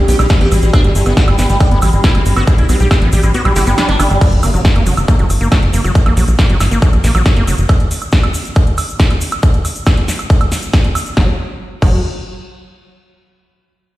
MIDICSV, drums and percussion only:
0, 0, Header, 1, 2, 480
1, 0, Start_track
1, 0, Tempo, 434783
1, 811, Time_signature, 4, 2, 24, 8
1, 15423, End_track
2, 0, Start_track
2, 0, Title_t, "Drums"
2, 91, Note_on_c, 9, 46, 101
2, 102, Note_on_c, 9, 82, 95
2, 201, Note_off_c, 9, 46, 0
2, 211, Note_on_c, 9, 42, 53
2, 211, Note_on_c, 9, 76, 83
2, 213, Note_off_c, 9, 82, 0
2, 214, Note_on_c, 9, 82, 52
2, 317, Note_off_c, 9, 82, 0
2, 317, Note_on_c, 9, 82, 37
2, 321, Note_off_c, 9, 42, 0
2, 321, Note_off_c, 9, 76, 0
2, 331, Note_on_c, 9, 36, 117
2, 331, Note_on_c, 9, 38, 120
2, 331, Note_on_c, 9, 42, 81
2, 427, Note_off_c, 9, 82, 0
2, 441, Note_off_c, 9, 38, 0
2, 441, Note_off_c, 9, 42, 0
2, 442, Note_off_c, 9, 36, 0
2, 451, Note_on_c, 9, 42, 53
2, 562, Note_off_c, 9, 42, 0
2, 570, Note_on_c, 9, 82, 86
2, 571, Note_on_c, 9, 46, 92
2, 571, Note_on_c, 9, 76, 44
2, 681, Note_off_c, 9, 46, 0
2, 681, Note_off_c, 9, 76, 0
2, 681, Note_off_c, 9, 82, 0
2, 688, Note_on_c, 9, 82, 49
2, 691, Note_on_c, 9, 42, 52
2, 799, Note_off_c, 9, 82, 0
2, 802, Note_off_c, 9, 42, 0
2, 811, Note_on_c, 9, 36, 119
2, 811, Note_on_c, 9, 42, 82
2, 811, Note_on_c, 9, 76, 79
2, 811, Note_on_c, 9, 82, 41
2, 921, Note_off_c, 9, 82, 0
2, 922, Note_off_c, 9, 36, 0
2, 922, Note_off_c, 9, 42, 0
2, 922, Note_off_c, 9, 76, 0
2, 931, Note_on_c, 9, 42, 59
2, 1042, Note_off_c, 9, 42, 0
2, 1051, Note_on_c, 9, 46, 99
2, 1055, Note_on_c, 9, 82, 96
2, 1161, Note_off_c, 9, 46, 0
2, 1166, Note_off_c, 9, 82, 0
2, 1168, Note_on_c, 9, 82, 48
2, 1171, Note_on_c, 9, 42, 57
2, 1171, Note_on_c, 9, 76, 41
2, 1279, Note_off_c, 9, 82, 0
2, 1282, Note_off_c, 9, 42, 0
2, 1282, Note_off_c, 9, 76, 0
2, 1291, Note_on_c, 9, 36, 122
2, 1291, Note_on_c, 9, 38, 119
2, 1291, Note_on_c, 9, 42, 81
2, 1293, Note_on_c, 9, 82, 38
2, 1402, Note_off_c, 9, 36, 0
2, 1402, Note_off_c, 9, 38, 0
2, 1402, Note_off_c, 9, 42, 0
2, 1404, Note_off_c, 9, 82, 0
2, 1411, Note_on_c, 9, 42, 56
2, 1411, Note_on_c, 9, 76, 87
2, 1522, Note_off_c, 9, 42, 0
2, 1522, Note_off_c, 9, 76, 0
2, 1528, Note_on_c, 9, 82, 89
2, 1531, Note_on_c, 9, 38, 61
2, 1531, Note_on_c, 9, 46, 88
2, 1639, Note_off_c, 9, 82, 0
2, 1642, Note_off_c, 9, 38, 0
2, 1642, Note_off_c, 9, 46, 0
2, 1651, Note_on_c, 9, 42, 57
2, 1652, Note_on_c, 9, 82, 51
2, 1762, Note_off_c, 9, 42, 0
2, 1762, Note_off_c, 9, 82, 0
2, 1764, Note_on_c, 9, 82, 35
2, 1771, Note_on_c, 9, 36, 117
2, 1771, Note_on_c, 9, 42, 80
2, 1771, Note_on_c, 9, 76, 40
2, 1874, Note_off_c, 9, 82, 0
2, 1882, Note_off_c, 9, 36, 0
2, 1882, Note_off_c, 9, 42, 0
2, 1882, Note_off_c, 9, 76, 0
2, 1892, Note_on_c, 9, 42, 54
2, 2002, Note_off_c, 9, 42, 0
2, 2008, Note_on_c, 9, 82, 85
2, 2011, Note_on_c, 9, 46, 98
2, 2011, Note_on_c, 9, 76, 78
2, 2119, Note_off_c, 9, 82, 0
2, 2122, Note_off_c, 9, 46, 0
2, 2122, Note_off_c, 9, 76, 0
2, 2129, Note_on_c, 9, 82, 48
2, 2131, Note_on_c, 9, 42, 56
2, 2239, Note_off_c, 9, 82, 0
2, 2242, Note_off_c, 9, 42, 0
2, 2247, Note_on_c, 9, 82, 38
2, 2251, Note_on_c, 9, 36, 117
2, 2251, Note_on_c, 9, 38, 123
2, 2251, Note_on_c, 9, 42, 83
2, 2357, Note_off_c, 9, 82, 0
2, 2362, Note_off_c, 9, 36, 0
2, 2362, Note_off_c, 9, 38, 0
2, 2362, Note_off_c, 9, 42, 0
2, 2372, Note_on_c, 9, 42, 59
2, 2372, Note_on_c, 9, 76, 43
2, 2482, Note_off_c, 9, 42, 0
2, 2482, Note_off_c, 9, 76, 0
2, 2492, Note_on_c, 9, 46, 92
2, 2493, Note_on_c, 9, 82, 85
2, 2602, Note_off_c, 9, 46, 0
2, 2603, Note_off_c, 9, 82, 0
2, 2611, Note_on_c, 9, 42, 53
2, 2611, Note_on_c, 9, 76, 79
2, 2615, Note_on_c, 9, 82, 46
2, 2722, Note_off_c, 9, 42, 0
2, 2722, Note_off_c, 9, 76, 0
2, 2726, Note_off_c, 9, 82, 0
2, 2730, Note_on_c, 9, 82, 40
2, 2731, Note_on_c, 9, 42, 81
2, 2732, Note_on_c, 9, 36, 115
2, 2840, Note_off_c, 9, 82, 0
2, 2842, Note_off_c, 9, 36, 0
2, 2842, Note_off_c, 9, 42, 0
2, 2851, Note_on_c, 9, 42, 61
2, 2962, Note_off_c, 9, 42, 0
2, 2971, Note_on_c, 9, 46, 103
2, 2971, Note_on_c, 9, 76, 38
2, 2972, Note_on_c, 9, 82, 88
2, 3082, Note_off_c, 9, 46, 0
2, 3082, Note_off_c, 9, 76, 0
2, 3082, Note_off_c, 9, 82, 0
2, 3091, Note_on_c, 9, 42, 54
2, 3093, Note_on_c, 9, 82, 46
2, 3202, Note_off_c, 9, 42, 0
2, 3203, Note_off_c, 9, 82, 0
2, 3211, Note_on_c, 9, 36, 122
2, 3211, Note_on_c, 9, 38, 115
2, 3211, Note_on_c, 9, 42, 80
2, 3211, Note_on_c, 9, 76, 80
2, 3218, Note_on_c, 9, 82, 42
2, 3322, Note_off_c, 9, 36, 0
2, 3322, Note_off_c, 9, 38, 0
2, 3322, Note_off_c, 9, 42, 0
2, 3322, Note_off_c, 9, 76, 0
2, 3328, Note_off_c, 9, 82, 0
2, 3331, Note_on_c, 9, 42, 59
2, 3442, Note_off_c, 9, 42, 0
2, 3448, Note_on_c, 9, 82, 100
2, 3451, Note_on_c, 9, 46, 91
2, 3559, Note_off_c, 9, 82, 0
2, 3562, Note_off_c, 9, 46, 0
2, 3563, Note_on_c, 9, 82, 54
2, 3571, Note_on_c, 9, 42, 58
2, 3571, Note_on_c, 9, 76, 40
2, 3673, Note_off_c, 9, 82, 0
2, 3682, Note_off_c, 9, 42, 0
2, 3682, Note_off_c, 9, 76, 0
2, 3691, Note_on_c, 9, 42, 87
2, 3696, Note_on_c, 9, 82, 36
2, 3802, Note_off_c, 9, 42, 0
2, 3807, Note_off_c, 9, 82, 0
2, 3811, Note_on_c, 9, 42, 56
2, 3811, Note_on_c, 9, 76, 78
2, 3922, Note_off_c, 9, 42, 0
2, 3922, Note_off_c, 9, 76, 0
2, 3930, Note_on_c, 9, 82, 95
2, 3931, Note_on_c, 9, 38, 66
2, 3931, Note_on_c, 9, 46, 105
2, 4041, Note_off_c, 9, 82, 0
2, 4042, Note_off_c, 9, 38, 0
2, 4042, Note_off_c, 9, 46, 0
2, 4047, Note_on_c, 9, 82, 55
2, 4051, Note_on_c, 9, 42, 59
2, 4157, Note_off_c, 9, 82, 0
2, 4162, Note_off_c, 9, 42, 0
2, 4171, Note_on_c, 9, 38, 124
2, 4171, Note_on_c, 9, 42, 84
2, 4171, Note_on_c, 9, 76, 40
2, 4175, Note_on_c, 9, 82, 40
2, 4282, Note_off_c, 9, 38, 0
2, 4282, Note_off_c, 9, 42, 0
2, 4282, Note_off_c, 9, 76, 0
2, 4286, Note_off_c, 9, 82, 0
2, 4291, Note_on_c, 9, 42, 57
2, 4402, Note_off_c, 9, 42, 0
2, 4411, Note_on_c, 9, 46, 91
2, 4411, Note_on_c, 9, 76, 79
2, 4414, Note_on_c, 9, 82, 92
2, 4522, Note_off_c, 9, 46, 0
2, 4522, Note_off_c, 9, 76, 0
2, 4525, Note_off_c, 9, 82, 0
2, 4531, Note_on_c, 9, 42, 55
2, 4532, Note_on_c, 9, 82, 49
2, 4642, Note_off_c, 9, 42, 0
2, 4642, Note_off_c, 9, 82, 0
2, 4651, Note_on_c, 9, 36, 119
2, 4651, Note_on_c, 9, 42, 82
2, 4651, Note_on_c, 9, 49, 96
2, 4651, Note_on_c, 9, 76, 37
2, 4654, Note_on_c, 9, 82, 40
2, 4762, Note_off_c, 9, 36, 0
2, 4762, Note_off_c, 9, 42, 0
2, 4762, Note_off_c, 9, 49, 0
2, 4762, Note_off_c, 9, 76, 0
2, 4765, Note_off_c, 9, 82, 0
2, 4771, Note_on_c, 9, 42, 55
2, 4882, Note_off_c, 9, 42, 0
2, 4889, Note_on_c, 9, 82, 97
2, 4891, Note_on_c, 9, 46, 106
2, 4891, Note_on_c, 9, 76, 74
2, 4999, Note_off_c, 9, 82, 0
2, 5002, Note_off_c, 9, 46, 0
2, 5002, Note_off_c, 9, 76, 0
2, 5011, Note_on_c, 9, 42, 57
2, 5016, Note_on_c, 9, 82, 53
2, 5122, Note_off_c, 9, 42, 0
2, 5126, Note_off_c, 9, 82, 0
2, 5131, Note_on_c, 9, 36, 127
2, 5131, Note_on_c, 9, 38, 125
2, 5131, Note_on_c, 9, 42, 81
2, 5132, Note_on_c, 9, 82, 42
2, 5242, Note_off_c, 9, 36, 0
2, 5242, Note_off_c, 9, 38, 0
2, 5242, Note_off_c, 9, 42, 0
2, 5242, Note_off_c, 9, 82, 0
2, 5252, Note_on_c, 9, 42, 55
2, 5252, Note_on_c, 9, 76, 39
2, 5362, Note_off_c, 9, 42, 0
2, 5362, Note_off_c, 9, 76, 0
2, 5369, Note_on_c, 9, 82, 92
2, 5371, Note_on_c, 9, 46, 95
2, 5479, Note_off_c, 9, 82, 0
2, 5482, Note_off_c, 9, 46, 0
2, 5491, Note_on_c, 9, 42, 56
2, 5491, Note_on_c, 9, 76, 75
2, 5491, Note_on_c, 9, 82, 53
2, 5602, Note_off_c, 9, 42, 0
2, 5602, Note_off_c, 9, 76, 0
2, 5602, Note_off_c, 9, 82, 0
2, 5611, Note_on_c, 9, 36, 121
2, 5611, Note_on_c, 9, 42, 80
2, 5614, Note_on_c, 9, 82, 38
2, 5722, Note_off_c, 9, 36, 0
2, 5722, Note_off_c, 9, 42, 0
2, 5725, Note_off_c, 9, 82, 0
2, 5731, Note_on_c, 9, 42, 53
2, 5842, Note_off_c, 9, 42, 0
2, 5851, Note_on_c, 9, 46, 102
2, 5851, Note_on_c, 9, 76, 37
2, 5852, Note_on_c, 9, 82, 98
2, 5962, Note_off_c, 9, 46, 0
2, 5962, Note_off_c, 9, 76, 0
2, 5962, Note_off_c, 9, 82, 0
2, 5971, Note_on_c, 9, 42, 57
2, 5985, Note_on_c, 9, 82, 48
2, 6082, Note_off_c, 9, 42, 0
2, 6091, Note_off_c, 9, 82, 0
2, 6091, Note_on_c, 9, 38, 126
2, 6091, Note_on_c, 9, 42, 81
2, 6091, Note_on_c, 9, 76, 75
2, 6091, Note_on_c, 9, 82, 38
2, 6092, Note_on_c, 9, 36, 118
2, 6201, Note_off_c, 9, 82, 0
2, 6202, Note_off_c, 9, 36, 0
2, 6202, Note_off_c, 9, 38, 0
2, 6202, Note_off_c, 9, 42, 0
2, 6202, Note_off_c, 9, 76, 0
2, 6211, Note_on_c, 9, 42, 57
2, 6321, Note_off_c, 9, 42, 0
2, 6331, Note_on_c, 9, 46, 92
2, 6331, Note_on_c, 9, 82, 101
2, 6441, Note_off_c, 9, 82, 0
2, 6442, Note_off_c, 9, 46, 0
2, 6451, Note_on_c, 9, 42, 56
2, 6451, Note_on_c, 9, 76, 37
2, 6458, Note_on_c, 9, 82, 50
2, 6562, Note_off_c, 9, 42, 0
2, 6562, Note_off_c, 9, 76, 0
2, 6569, Note_off_c, 9, 82, 0
2, 6571, Note_on_c, 9, 42, 79
2, 6572, Note_on_c, 9, 36, 120
2, 6574, Note_on_c, 9, 82, 43
2, 6682, Note_off_c, 9, 36, 0
2, 6682, Note_off_c, 9, 42, 0
2, 6684, Note_off_c, 9, 82, 0
2, 6691, Note_on_c, 9, 42, 56
2, 6691, Note_on_c, 9, 76, 80
2, 6802, Note_off_c, 9, 42, 0
2, 6802, Note_off_c, 9, 76, 0
2, 6811, Note_on_c, 9, 46, 108
2, 6815, Note_on_c, 9, 82, 101
2, 6922, Note_off_c, 9, 46, 0
2, 6925, Note_off_c, 9, 82, 0
2, 6931, Note_on_c, 9, 42, 53
2, 6932, Note_on_c, 9, 82, 53
2, 7042, Note_off_c, 9, 42, 0
2, 7043, Note_off_c, 9, 82, 0
2, 7051, Note_on_c, 9, 36, 125
2, 7051, Note_on_c, 9, 38, 126
2, 7051, Note_on_c, 9, 42, 78
2, 7051, Note_on_c, 9, 76, 39
2, 7053, Note_on_c, 9, 82, 39
2, 7162, Note_off_c, 9, 36, 0
2, 7162, Note_off_c, 9, 38, 0
2, 7162, Note_off_c, 9, 42, 0
2, 7162, Note_off_c, 9, 76, 0
2, 7163, Note_off_c, 9, 82, 0
2, 7171, Note_on_c, 9, 42, 57
2, 7282, Note_off_c, 9, 42, 0
2, 7290, Note_on_c, 9, 82, 93
2, 7291, Note_on_c, 9, 38, 62
2, 7291, Note_on_c, 9, 46, 91
2, 7291, Note_on_c, 9, 76, 78
2, 7401, Note_off_c, 9, 82, 0
2, 7402, Note_off_c, 9, 38, 0
2, 7402, Note_off_c, 9, 46, 0
2, 7402, Note_off_c, 9, 76, 0
2, 7412, Note_on_c, 9, 42, 55
2, 7416, Note_on_c, 9, 82, 58
2, 7522, Note_off_c, 9, 42, 0
2, 7526, Note_off_c, 9, 82, 0
2, 7531, Note_on_c, 9, 36, 124
2, 7531, Note_on_c, 9, 42, 80
2, 7533, Note_on_c, 9, 82, 43
2, 7642, Note_off_c, 9, 36, 0
2, 7642, Note_off_c, 9, 42, 0
2, 7643, Note_off_c, 9, 82, 0
2, 7652, Note_on_c, 9, 42, 55
2, 7652, Note_on_c, 9, 76, 39
2, 7762, Note_off_c, 9, 42, 0
2, 7762, Note_off_c, 9, 76, 0
2, 7771, Note_on_c, 9, 38, 63
2, 7771, Note_on_c, 9, 46, 111
2, 7775, Note_on_c, 9, 82, 90
2, 7882, Note_off_c, 9, 38, 0
2, 7882, Note_off_c, 9, 46, 0
2, 7886, Note_off_c, 9, 82, 0
2, 7891, Note_on_c, 9, 82, 50
2, 7892, Note_on_c, 9, 42, 56
2, 7892, Note_on_c, 9, 76, 77
2, 8001, Note_off_c, 9, 82, 0
2, 8002, Note_off_c, 9, 42, 0
2, 8002, Note_off_c, 9, 76, 0
2, 8011, Note_on_c, 9, 36, 127
2, 8011, Note_on_c, 9, 82, 39
2, 8012, Note_on_c, 9, 38, 124
2, 8012, Note_on_c, 9, 42, 81
2, 8121, Note_off_c, 9, 82, 0
2, 8122, Note_off_c, 9, 36, 0
2, 8122, Note_off_c, 9, 38, 0
2, 8122, Note_off_c, 9, 42, 0
2, 8131, Note_on_c, 9, 42, 55
2, 8242, Note_off_c, 9, 42, 0
2, 8252, Note_on_c, 9, 46, 96
2, 8252, Note_on_c, 9, 76, 37
2, 8255, Note_on_c, 9, 82, 92
2, 8362, Note_off_c, 9, 46, 0
2, 8362, Note_off_c, 9, 76, 0
2, 8365, Note_off_c, 9, 82, 0
2, 8367, Note_on_c, 9, 82, 49
2, 8372, Note_on_c, 9, 42, 53
2, 8477, Note_off_c, 9, 82, 0
2, 8482, Note_off_c, 9, 42, 0
2, 8489, Note_on_c, 9, 82, 39
2, 8491, Note_on_c, 9, 42, 73
2, 8491, Note_on_c, 9, 76, 72
2, 8492, Note_on_c, 9, 36, 127
2, 8599, Note_off_c, 9, 82, 0
2, 8602, Note_off_c, 9, 36, 0
2, 8602, Note_off_c, 9, 42, 0
2, 8602, Note_off_c, 9, 76, 0
2, 8611, Note_on_c, 9, 42, 56
2, 8722, Note_off_c, 9, 42, 0
2, 8731, Note_on_c, 9, 46, 108
2, 8735, Note_on_c, 9, 82, 101
2, 8842, Note_off_c, 9, 46, 0
2, 8843, Note_off_c, 9, 82, 0
2, 8843, Note_on_c, 9, 82, 53
2, 8851, Note_on_c, 9, 76, 41
2, 8954, Note_off_c, 9, 82, 0
2, 8959, Note_on_c, 9, 82, 44
2, 8962, Note_off_c, 9, 76, 0
2, 8971, Note_on_c, 9, 36, 125
2, 8971, Note_on_c, 9, 38, 125
2, 8971, Note_on_c, 9, 42, 74
2, 9069, Note_off_c, 9, 82, 0
2, 9082, Note_off_c, 9, 36, 0
2, 9082, Note_off_c, 9, 38, 0
2, 9082, Note_off_c, 9, 42, 0
2, 9091, Note_on_c, 9, 42, 52
2, 9091, Note_on_c, 9, 76, 79
2, 9202, Note_off_c, 9, 42, 0
2, 9202, Note_off_c, 9, 76, 0
2, 9207, Note_on_c, 9, 82, 92
2, 9211, Note_on_c, 9, 46, 101
2, 9318, Note_off_c, 9, 82, 0
2, 9322, Note_off_c, 9, 46, 0
2, 9331, Note_on_c, 9, 42, 52
2, 9337, Note_on_c, 9, 82, 52
2, 9442, Note_off_c, 9, 42, 0
2, 9443, Note_off_c, 9, 82, 0
2, 9443, Note_on_c, 9, 82, 45
2, 9451, Note_on_c, 9, 36, 124
2, 9451, Note_on_c, 9, 42, 80
2, 9451, Note_on_c, 9, 76, 39
2, 9554, Note_off_c, 9, 82, 0
2, 9562, Note_off_c, 9, 36, 0
2, 9562, Note_off_c, 9, 42, 0
2, 9562, Note_off_c, 9, 76, 0
2, 9571, Note_on_c, 9, 42, 52
2, 9682, Note_off_c, 9, 42, 0
2, 9689, Note_on_c, 9, 82, 99
2, 9691, Note_on_c, 9, 46, 110
2, 9691, Note_on_c, 9, 76, 76
2, 9800, Note_off_c, 9, 82, 0
2, 9802, Note_off_c, 9, 46, 0
2, 9802, Note_off_c, 9, 76, 0
2, 9811, Note_on_c, 9, 42, 53
2, 9819, Note_on_c, 9, 82, 54
2, 9922, Note_off_c, 9, 42, 0
2, 9930, Note_off_c, 9, 82, 0
2, 9931, Note_on_c, 9, 36, 127
2, 9932, Note_on_c, 9, 38, 121
2, 9932, Note_on_c, 9, 42, 80
2, 9934, Note_on_c, 9, 82, 40
2, 10042, Note_off_c, 9, 36, 0
2, 10042, Note_off_c, 9, 38, 0
2, 10042, Note_off_c, 9, 42, 0
2, 10044, Note_off_c, 9, 82, 0
2, 10052, Note_on_c, 9, 42, 54
2, 10052, Note_on_c, 9, 76, 41
2, 10162, Note_off_c, 9, 42, 0
2, 10162, Note_off_c, 9, 76, 0
2, 10168, Note_on_c, 9, 82, 106
2, 10172, Note_on_c, 9, 46, 105
2, 10279, Note_off_c, 9, 82, 0
2, 10282, Note_off_c, 9, 46, 0
2, 10284, Note_on_c, 9, 82, 51
2, 10292, Note_on_c, 9, 42, 51
2, 10292, Note_on_c, 9, 76, 75
2, 10394, Note_off_c, 9, 82, 0
2, 10402, Note_off_c, 9, 42, 0
2, 10402, Note_off_c, 9, 76, 0
2, 10407, Note_on_c, 9, 82, 44
2, 10411, Note_on_c, 9, 36, 125
2, 10412, Note_on_c, 9, 42, 74
2, 10517, Note_off_c, 9, 82, 0
2, 10522, Note_off_c, 9, 36, 0
2, 10522, Note_off_c, 9, 42, 0
2, 10532, Note_on_c, 9, 42, 52
2, 10642, Note_off_c, 9, 42, 0
2, 10651, Note_on_c, 9, 46, 108
2, 10651, Note_on_c, 9, 76, 39
2, 10656, Note_on_c, 9, 82, 92
2, 10762, Note_off_c, 9, 46, 0
2, 10762, Note_off_c, 9, 76, 0
2, 10767, Note_off_c, 9, 82, 0
2, 10768, Note_on_c, 9, 82, 60
2, 10771, Note_on_c, 9, 42, 52
2, 10879, Note_off_c, 9, 82, 0
2, 10882, Note_off_c, 9, 42, 0
2, 10882, Note_on_c, 9, 82, 39
2, 10892, Note_on_c, 9, 36, 127
2, 10892, Note_on_c, 9, 38, 115
2, 10892, Note_on_c, 9, 42, 73
2, 10892, Note_on_c, 9, 76, 80
2, 10993, Note_off_c, 9, 82, 0
2, 11002, Note_off_c, 9, 36, 0
2, 11002, Note_off_c, 9, 38, 0
2, 11002, Note_off_c, 9, 42, 0
2, 11002, Note_off_c, 9, 76, 0
2, 11012, Note_on_c, 9, 42, 52
2, 11122, Note_off_c, 9, 42, 0
2, 11131, Note_on_c, 9, 38, 61
2, 11131, Note_on_c, 9, 46, 97
2, 11134, Note_on_c, 9, 82, 107
2, 11242, Note_off_c, 9, 38, 0
2, 11242, Note_off_c, 9, 46, 0
2, 11245, Note_off_c, 9, 82, 0
2, 11251, Note_on_c, 9, 42, 52
2, 11251, Note_on_c, 9, 76, 41
2, 11256, Note_on_c, 9, 82, 58
2, 11362, Note_off_c, 9, 42, 0
2, 11362, Note_off_c, 9, 76, 0
2, 11366, Note_off_c, 9, 82, 0
2, 11371, Note_on_c, 9, 42, 75
2, 11372, Note_on_c, 9, 36, 127
2, 11377, Note_on_c, 9, 82, 39
2, 11482, Note_off_c, 9, 36, 0
2, 11482, Note_off_c, 9, 42, 0
2, 11488, Note_off_c, 9, 82, 0
2, 11491, Note_on_c, 9, 42, 52
2, 11491, Note_on_c, 9, 76, 77
2, 11602, Note_off_c, 9, 42, 0
2, 11602, Note_off_c, 9, 76, 0
2, 11611, Note_on_c, 9, 38, 59
2, 11611, Note_on_c, 9, 46, 106
2, 11614, Note_on_c, 9, 82, 98
2, 11722, Note_off_c, 9, 38, 0
2, 11722, Note_off_c, 9, 46, 0
2, 11724, Note_off_c, 9, 82, 0
2, 11728, Note_on_c, 9, 82, 51
2, 11731, Note_on_c, 9, 42, 53
2, 11839, Note_off_c, 9, 82, 0
2, 11842, Note_off_c, 9, 42, 0
2, 11850, Note_on_c, 9, 82, 41
2, 11851, Note_on_c, 9, 36, 126
2, 11851, Note_on_c, 9, 38, 116
2, 11851, Note_on_c, 9, 42, 72
2, 11851, Note_on_c, 9, 76, 42
2, 11961, Note_off_c, 9, 82, 0
2, 11962, Note_off_c, 9, 36, 0
2, 11962, Note_off_c, 9, 38, 0
2, 11962, Note_off_c, 9, 42, 0
2, 11962, Note_off_c, 9, 76, 0
2, 11971, Note_on_c, 9, 42, 49
2, 12082, Note_off_c, 9, 42, 0
2, 12091, Note_on_c, 9, 46, 94
2, 12091, Note_on_c, 9, 76, 83
2, 12101, Note_on_c, 9, 82, 96
2, 12202, Note_off_c, 9, 46, 0
2, 12202, Note_off_c, 9, 76, 0
2, 12211, Note_off_c, 9, 82, 0
2, 12211, Note_on_c, 9, 42, 49
2, 12211, Note_on_c, 9, 82, 49
2, 12321, Note_off_c, 9, 82, 0
2, 12322, Note_off_c, 9, 42, 0
2, 12331, Note_on_c, 9, 36, 110
2, 12331, Note_on_c, 9, 38, 84
2, 12442, Note_off_c, 9, 36, 0
2, 12442, Note_off_c, 9, 38, 0
2, 13051, Note_on_c, 9, 36, 114
2, 13051, Note_on_c, 9, 49, 87
2, 13162, Note_off_c, 9, 36, 0
2, 13162, Note_off_c, 9, 49, 0
2, 15423, End_track
0, 0, End_of_file